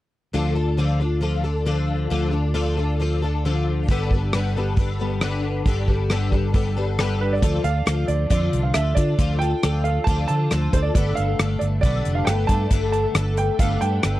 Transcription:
0.33 fingered electric bass D2, twelve-string acoustic guitar D3 F3 D4 F4 A4
0.55 twelve-string acoustic guitar D4 F4 A4
0.77 twelve-string acoustic guitar D3 F3 D4 F4 A4
1.00 twelve-string acoustic guitar D4 F4 A4
1.21 twelve-string acoustic guitar F3 D4 F4 A4
1.44 twelve-string acoustic guitar D4 F4 A4
1.66 twelve-string acoustic guitar D3 F3 D4 F4 A4
2.10 fingered electric bass D2, twelve-string acoustic guitar D3 F3 D4 F4 A4
2.31 twelve-string acoustic guitar D4 F4 A4
2.54 twelve-string acoustic guitar D3 F3 D4 F4 A4
2.77 twelve-string acoustic guitar D4 F4 A4
3.00 twelve-string acoustic guitar F3 D4 F4 A4
3.22 twelve-string acoustic guitar D4 F4 A4
3.45 twelve-string acoustic guitar D3 F3 D4 F4 A4
3.88 fingered electric bass G1, twelve-string acoustic guitar G2 D3 G3 B3 D4 A4, kick, open hi-hat
4.11 twelve-string acoustic guitar B3 D4 A4, kick
4.15 twelve-string acoustic guitar G3
4.33 twelve-string acoustic guitar G2 D3 G3 B3 D4 A4, cross-stick, open hi-hat
4.57 twelve-string acoustic guitar G3 B3 D4 A4
4.77 twelve-string acoustic guitar G3 B3 D4 A4, kick, open hi-hat
5.00 twelve-string acoustic guitar G3 B3 D4 A4
5.21 twelve-string acoustic guitar G2 D3 G3 B3 D4 A4, cross-stick, open hi-hat
5.66 fingered electric bass G1, twelve-string acoustic guitar G2 D3 G3 B3 D4 A4, kick, open hi-hat
5.87 twelve-string acoustic guitar G3 B3 D4 A4, kick
6.10 twelve-string acoustic guitar G2 D3 G3 B3 D4 A4, cross-stick, open hi-hat
6.32 twelve-string acoustic guitar G3 B3 D4 A4, kick
6.54 twelve-string acoustic guitar G3 B3 D4 A4, kick, open hi-hat
6.77 twelve-string acoustic guitar G3 B3 D4 A4
6.99 twelve-string acoustic guitar G2 D3 G3 B3 D4 A4, cross-stick, open hi-hat
7.21 grand piano B4
7.33 grand piano D5
7.42 fingered electric bass D2, twelve-string acoustic guitar D3 F3 D4 F4 A4, grand piano D5, kick, closed hi-hat
7.64 fingered electric bass D2, twelve-string acoustic guitar D4 F4 A4, grand piano F5, closed hi-hat
7.86 fingered electric bass D2, twelve-string acoustic guitar F3 D4 F4 A4, cross-stick, closed hi-hat
8.08 fingered electric bass D2, grand piano D5, closed hi-hat
8.30 fingered electric bass F2, twelve-string acoustic guitar D3 F3 D4 F4 A4, grand piano D5, kick, closed hi-hat
8.53 fingered electric bass C2, closed hi-hat
8.63 grand piano F5
8.74 fingered electric bass D2, twelve-string acoustic guitar F3 D4 F4 A4, grand piano E5, cross-stick, closed hi-hat
8.95 fingered electric bass D3, twelve-string acoustic guitar D4 F4 A4, grand piano D5, kick, closed hi-hat
9.19 fingered electric bass D2, twelve-string acoustic guitar D3 F3 D4 F4 A4, kick, closed hi-hat
9.39 twelve-string acoustic guitar D4 F4 A4, grand piano G5, closed hi-hat
9.62 fingered electric bass D2, twelve-string acoustic guitar F3 D4 F4 A4, cross-stick, closed hi-hat
9.84 grand piano F5, closed hi-hat
10.04 fingered electric bass D2, twelve-string acoustic guitar D3, grand piano A5, kick, closed hi-hat
10.08 twelve-string acoustic guitar F3 D4 F4 A4
10.28 fingered electric bass D3, grand piano A5, closed hi-hat
10.51 fingered electric bass D2, twelve-string acoustic guitar F3 D4 F4 A4, cross-stick, closed hi-hat
10.73 fingered electric bass D2, twelve-string acoustic guitar D4 F4 A4, grand piano C5, kick, closed hi-hat
10.82 grand piano D5
10.94 fingered electric bass G1, twelve-string acoustic guitar G2 D3 A3 B3 D4 A4, grand piano D5, kick, closed hi-hat
11.15 fingered electric bass G1, grand piano F5, closed hi-hat
11.39 fingered electric bass G1, twelve-string acoustic guitar A3 B3 D4 A4, cross-stick, closed hi-hat
11.59 fingered electric bass G1, grand piano D5, closed hi-hat
11.81 fingered electric bass B1, twelve-string acoustic guitar G2 D3, grand piano D5, kick, closed hi-hat
11.85 twelve-string acoustic guitar A3 B3 D4 A4
12.05 fingered electric bass F1, closed hi-hat
12.15 grand piano F5
12.25 fingered electric bass G1, twelve-string acoustic guitar A3 B3, grand piano G5, cross-stick, closed hi-hat
12.29 twelve-string acoustic guitar D4 A4
12.47 fingered electric bass G2, twelve-string acoustic guitar D4 A4, grand piano A5, kick, closed hi-hat
12.51 twelve-string acoustic guitar A3 B3
12.71 fingered electric bass G1, twelve-string acoustic guitar G2 D3 A3 B3 D4 A4, kick, closed hi-hat
12.92 grand piano A5, closed hi-hat
13.15 fingered electric bass G1, twelve-string acoustic guitar A3 B3 D4 A4, cross-stick, closed hi-hat
13.37 grand piano G5, closed hi-hat
13.59 fingered electric bass G1, twelve-string acoustic guitar G2 D3 A3 B3 D4 A4, grand piano F5, kick, closed hi-hat
13.81 fingered electric bass G2, grand piano G5, closed hi-hat
14.03 fingered electric bass G1, twelve-string acoustic guitar A3 B3 D4 A4, cross-stick, closed hi-hat

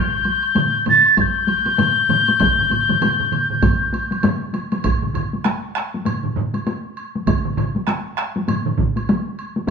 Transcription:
Already playing: piccolo G6
0.24 taiko high, high woodblock
0.43 high woodblock
0.56 taiko low-mid, taiko mid, taiko high, high woodblock
0.86 piccolo A6, taiko low-mid, taiko mid, taiko high, high woodblock
1.05 high woodblock
1.11 piccolo A6
1.17 piccolo G6, taiko, taiko high, high woodblock
1.48 taiko high, high woodblock
1.66 taiko high, high woodblock
1.78 taiko low-mid, taiko mid, taiko high, high woodblock
2.09 taiko low-mid, taiko mid, taiko high, high woodblock
2.28 taiko high, high woodblock
2.40 taiko, taiko low-mid, taiko mid, taiko high, high woodblock
2.58 taiko low-mid, taiko mid
2.70 taiko low-mid, taiko mid, taiko high, high woodblock
2.89 taiko low-mid, taiko mid, taiko high, high woodblock
3.01 taiko low-mid, taiko mid, taiko high, high woodblock
3.20 taiko low-mid, taiko mid
3.32 taiko low-mid, taiko mid, high woodblock
3.50 taiko low-mid, taiko mid
3.62 taiko, taiko low-mid, taiko mid, taiko high, high woodblock
3.93 taiko high, high woodblock
4.11 taiko high, high woodblock
4.23 taiko low-mid, taiko mid, taiko high, high woodblock
4.54 taiko high, high woodblock
4.72 taiko high, high woodblock
4.84 taiko, taiko low-mid, taiko mid, taiko high, high woodblock
5.02 taiko low-mid, taiko mid
5.14 taiko low-mid, taiko mid, high woodblock
5.33 taiko high
5.44 taiko rim, taiko high, high woodblock
5.46 taiko rim
5.75 taiko rim, high woodblock
5.77 taiko rim
5.94 taiko high
6.05 taiko low-mid, taiko mid, taiko high, high woodblock
6.24 taiko low-mid, taiko mid
6.36 taiko low-mid, taiko mid
6.54 taiko high, high woodblock
6.67 taiko high, high woodblock
6.97 high woodblock
7.16 taiko high
7.27 taiko, taiko low-mid, taiko mid, taiko high, high woodblock
7.45 taiko low-mid, taiko mid
7.57 taiko low-mid, taiko mid, high woodblock
7.76 taiko high
7.87 taiko rim, taiko high, high woodblock
8.18 taiko rim, high woodblock
8.36 taiko high
8.48 taiko low-mid, taiko mid, taiko high, high woodblock
8.66 taiko low-mid, taiko mid
8.78 taiko, taiko low-mid, taiko mid
8.96 taiko high, high woodblock
9.09 taiko high, high woodblock
9.39 high woodblock
9.56 taiko high

